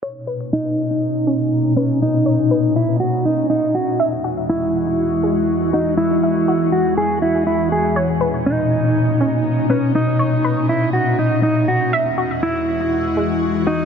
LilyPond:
<<
  \new Staff \with { instrumentName = "Synth pluck" } { \time 4/4 \key b \major \tempo 4 = 121 cis''8 b'2 cis'4 b'8~ | b'8 cis''8 b'2. | e''8 fis'2 gis4 fis'8~ | fis'8 e''8 fis'2. |
cis''8 b'2 cis'4 b'8~ | b'8 cis''8 b'2. | e''8 fis'2 gis4 fis'8 | }
  \new Staff \with { instrumentName = "Clean electric guitar" } { \time 4/4 \key b \major r4 dis'2~ dis'8 cis'8 | dis'4. e'8 fis'8 dis'8 dis'8 fis'8 | r4 e'2~ e'8 dis'8 | e'4. fis'8 gis'8 e'8 e'8 gis'8 |
r4 dis'2~ dis'8 cis'8 | dis'4. e'8 fis'8 dis'8 dis'8 fis'8 | r4 e'2~ e'8 dis'8 | }
  \new Staff \with { instrumentName = "Ambient pad" } { \clef bass \time 4/4 \key b \major <ais, b, cis' dis'>1~ | <ais, b, cis' dis'>1 | <e, e gis fis'>1~ | <e, e gis fis'>1 |
<ais, b, cis' dis'>1~ | <ais, b, cis' dis'>1 | <e, e gis fis'>1 | }
>>